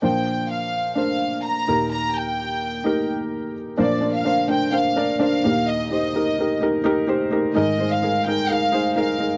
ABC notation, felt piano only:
X:1
M:4/4
L:1/8
Q:1/4=128
K:Eb
V:1 name="Felt piano"
[DBc]3 z [DBc]3 [EGB]- | [EGB]2 z2 [EGB]3 z | [DBc] [DBc] [DBc] [DBc] [DBc] [DBd] [DBc] [EGB]- | [EGB] [EGc] [EGB] [EGB] [EGB] [EGB] [EGc] [EGB] |
[EAB] [EAc] [EAB] [EAB] [EAB] [EAc] [EAB] [EAB] |]
V:2 name="Felt piano" clef=bass
[B,,F,]6- [B,,F,] [E,,B,,]- | [E,,B,,]6- [E,,B,,] z | [B,,F,]6- [B,,F,] [E,,B,,]- | [E,,B,,]6- [E,,B,,] z |
[A,,E,]8 |]